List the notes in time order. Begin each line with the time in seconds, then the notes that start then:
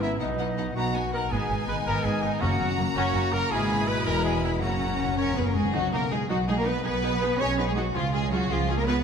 Already playing: G#1 G#2 G#3 B3 C#4 E4
0.01 B3 E4 E5
0.20 B1 B2 B3 D#4 D#5 F#5
0.38 B3 D#4 F#5
0.57 F#3 B3 D#4 F#5
0.75 B1 B2 B3 D#4 F#4 F#5 A#5
0.94 B3 D#4 G#5
1.13 B3 D#4 A#4 F#5 A#5
1.30 G#1 G#2 G#3 B3 D#4 G#4 G#5
1.50 G#1 G#2 B3
1.68 G#1 G#2 D#3 G#3 B4 B5
1.86 G#1 G#2 B3 A#4 A#5
2.04 G#1 G#2 B3 D#4 G#4 G#5
2.22 G#1 G#2 G#3 B3 D#4 D#5
2.41 F#1 F#2 A#3 C#4 F#4 F#5 A#5
2.58 F#1 F#2 B3 C#4
2.78 F#1 F#2 C#3 A#3
2.95 F#1 F#2 C#4 F#4 F#5
3.14 F#1 F#2 C#4
3.32 F#1 F#2 A#3 C#4 A#4 A#5
3.50 G#1 G#2 B2 G#3 E4 G#4 G#5 B5
3.70 B2
3.88 G#3 B4 B5
4.05 E1 E2 G#3 B3 A#4 A#5
4.24 E4 G#4 G#5
4.42 B3 E4 E5
4.61 F#1 F#2 A#3 C#4 F#4 F#5 A#5
4.70 F#2
4.77 F#2 C#4
4.84 F#2
4.92 F#2
4.99 F#2 C#3
5.08 F#2
5.16 F#2 C#4 A#4 C#5
5.23 F#2
5.31 F#2
5.36 F#2 B3 G#4 B4
5.45 F#2 A#3 A#4
5.54 F#2 G#3 C#4 F#4 G#4
5.63 F#2
5.73 B1 B2 F#3 D#4 F#4
5.92 A#3 D#4 A#4
6.11 G#3 D#4 G#4 B4
6.29 B1 F#3 D#4 F#4 F#5
6.47 G#3 D#4 G#4 D#5
6.57 A#3 A#4
6.65 B3 D#4 B4
6.83 B1 B2 B3 D#4 G#4 B4
7.02 D#4 G#4
7.21 D#4 G#4
7.39 B1 C#4 D#4 G#4 C#5 G#5
7.58 B3 D#4 G#4 B4 D#5
7.67 G#3 G#4
7.76 F#3 D#4 F#4 G#4 B4
7.95 C#2 C#3 F3 F4 G#4
8.13 G#3 C#4 F4 G#4
8.31 F#3 F4 F#4 G#4
8.50 C#2 F3 F4 G#4 F5
8.68 G#3 F4 G#4 C#5
8.78 A#3 A#4
8.86 B3 F4 G#4 B4